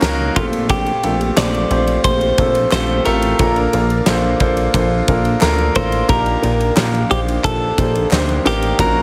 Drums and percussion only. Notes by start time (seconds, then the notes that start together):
0.02 snare, clap, ride
0.36 kick, ride
0.53 ride
0.69 kick, ride
0.86 ride
1.03 ride
1.21 ride
1.37 snare, clap, ride
1.54 ride
1.71 ride
1.87 ride
2.04 kick, ride
2.21 ride
2.38 kick, ride
2.55 ride
2.71 snare, clap, ride
3.05 ride
3.22 ride
3.39 kick, ride
3.56 ride
3.73 ride
3.90 ride
4.06 snare, clap, ride
4.40 kick, ride
4.57 ride
4.74 kick, ride
5.08 kick, ride
5.25 ride
5.41 snare, clap, ride
5.58 ride
5.75 kick, ride
5.92 ride
6.09 kick, ride
6.26 ride
6.43 ride
6.61 ride
6.77 snare, clap, ride
6.95 ride
7.11 ride
7.28 ride
7.44 kick, ride
7.78 kick, ride
7.95 ride
8.11 snare, clap, ride
8.29 ride
8.46 snare, ride
8.62 ride
8.79 kick, ride